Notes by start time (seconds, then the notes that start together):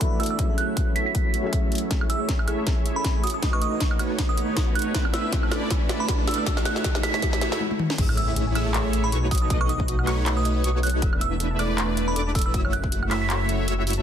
Already playing: D3 A3 B3 D4 E4 B4 D5 E5, riser
0.00 E3 D4 F#4 A4 E5, kick, closed hi-hat
0.19 E3 D4 F#4 A4 E5 E6, closed hi-hat
0.23 closed hi-hat
0.26 closed hi-hat
0.30 E6
0.37 E3 F#3 A3 C#4 E4 F#4 A4 C#5 E5, kick, closed hi-hat
0.41 E5
0.58 F#6, closed hi-hat
0.77 kick, closed hi-hat
0.96 A3 E4 F#4 C#5 E5 B6, closed hi-hat
1.06 B6
1.15 kick, closed hi-hat
1.34 closed hi-hat
1.42 F#3 C#4 G#4 A4 E5
1.53 kick, closed hi-hat
1.72 closed hi-hat
1.75 closed hi-hat
1.78 closed hi-hat
1.91 A3 C#4 G#4 C#5, kick, snare, closed hi-hat
2.01 C#5, high woodblock
2.10 E5 E6, closed hi-hat
2.20 E5
2.29 G#4, kick, snare, closed hi-hat
2.39 G#5, high woodblock
2.48 A3 E4 G#4 C#5 E5, closed hi-hat, high woodblock
2.58 A5
2.67 G#4, kick, snare, closed hi-hat
2.77 C#5
2.86 E5, closed hi-hat
2.96 E5 B5
3.05 G#4, kick, snare, closed hi-hat
3.15 G#5
3.23 D#3 B3 F#4 B4 D#6, closed hi-hat
3.27 closed hi-hat
3.30 closed hi-hat
3.34 A5 D#6
3.43 A3 D#4 F#4 B4 D#5, kick, snare, closed hi-hat
3.53 B4 C#6, high woodblock
3.62 D#5 D#6, closed hi-hat
3.72 D#5
3.80 F#4, kick, snare, closed hi-hat
3.91 F#5, high woodblock
3.99 A3 D#4 F#4 B4 C#5, closed hi-hat, high woodblock
4.10 A5
4.19 F#4, kick, snare, closed hi-hat
4.29 B4 D#6
4.38 D#5, closed hi-hat
4.48 D#5
4.57 F#4, kick, snare, closed hi-hat
4.67 F#5
4.75 F#4 F#6, closed hi-hat
4.79 closed hi-hat
4.82 closed hi-hat
4.86 A5
4.95 D3 A3 E4 A4, kick, snare, closed hi-hat
5.05 D5, high woodblock
5.14 E5 E6, snare, closed hi-hat
5.24 E5
5.33 A4, kick, snare, closed hi-hat
5.43 A5, high woodblock
5.51 A3 D4 E4 A4 B4 D5, snare, closed hi-hat, high woodblock
5.62 B5
5.70 A4, kick, snare, closed hi-hat
5.81 D5
5.89 E5, snare, closed hi-hat
6.00 E5 B5
6.08 A4, kick, snare, closed hi-hat
6.19 A5
6.27 A4 E6, snare, closed hi-hat
6.31 closed hi-hat
6.34 closed hi-hat
6.38 B5 E6
6.46 A3 E4 F#4 C#5, kick, snare, closed hi-hat
6.57 C#5, snare, high woodblock
6.65 E5 F#6, snare, closed hi-hat
6.76 E5, snare
6.84 F#4, kick, snare, closed hi-hat
6.95 F#5, snare, high woodblock
7.03 A3 E4 F#4 C#5 E5 B6, snare, closed hi-hat, high woodblock
7.14 A5 B6, snare
7.22 F#4, kick, snare, closed hi-hat
7.33 C#5, snare
7.41 E5, snare, closed hi-hat
7.52 E5, snare
7.61 high tom
7.71 high tom
7.79 mid tom
7.90 snare
7.98 A1 A3 E4 G#4 C#5 E5 E6, kick, closed hi-hat, crash, impact
8.09 C#5, high woodblock
8.17 E5 E6, closed hi-hat
8.28 E5
8.36 G#4, closed hi-hat
8.47 G#5
8.55 A1 A3 E4 G#4 C#5 E5 E6, closed hi-hat, high woodblock
8.66 A5
8.74 G#4, clap, closed hi-hat
8.85 C#5
8.93 E5, closed hi-hat
9.04 E5 B5
9.12 B1 A3 D#4 F#4 G#4 B4 C#5 C#6, closed hi-hat
9.23 G#5
9.31 F#4 D#6, kick, closed hi-hat, open hi-hat
9.38 closed hi-hat
9.42 A5 D#6
9.50 B1 A3 D#4 F#4 B4 D#5 D#6, kick, closed hi-hat
9.61 B4 C#6, high woodblock
9.69 D#5 D#6, closed hi-hat
9.80 D#5, kick
9.88 F#4, closed hi-hat
9.99 F#5, high woodblock
10.07 B1 A3 D#4 F#4 B4 C#5 C#6, clap, closed hi-hat, high woodblock
10.18 A5
10.26 F#4, clap, closed hi-hat
10.37 B4 D#6
10.45 D#5, closed hi-hat
10.56 D#5
10.64 B1 A3 D#4 F#4 B4 C#5 C#6, closed hi-hat
10.75 F#5
10.83 F#4 F#6, closed hi-hat, open hi-hat
10.90 closed hi-hat
10.94 A5
11.02 E1 A3 D4 E4 A4 B4 E5 E6, kick, closed hi-hat
11.13 D5, high woodblock
11.21 E5 E6, closed hi-hat
11.32 E5
11.40 A4, closed hi-hat
11.51 A5
11.59 E1 A3 D4 E4 A4 B4 D5 D6, closed hi-hat, high woodblock
11.70 B5
11.78 A4, clap, closed hi-hat
11.89 D5
11.97 E5, closed hi-hat
12.08 E5 B5
12.16 E1 A3 D4 E4 A4 B4 D5 D6, closed hi-hat
12.27 A5
12.35 A4 E6, kick, closed hi-hat, open hi-hat
12.41 closed hi-hat
12.46 B5 E6
12.54 F#1 A3 E4 F#4 C#5 E5 E6, kick, closed hi-hat
12.65 C#5, high woodblock
12.73 E5 F#6, closed hi-hat
12.84 E5, kick
12.92 F#4, closed hi-hat
13.03 F#5, high woodblock
13.11 F#1 A3 E4 F#4 C#5 E5 E6 B6, clap, closed hi-hat, high woodblock
13.22 A5 B6
13.30 F#4, clap, closed hi-hat
13.40 C#5
13.49 E5, closed hi-hat
13.59 E5
13.68 F#1 A3 E4 F#4 C#5 E5 E6, closed hi-hat
13.78 F#5
13.87 F#4, closed hi-hat, open hi-hat
13.93 closed hi-hat
13.97 A5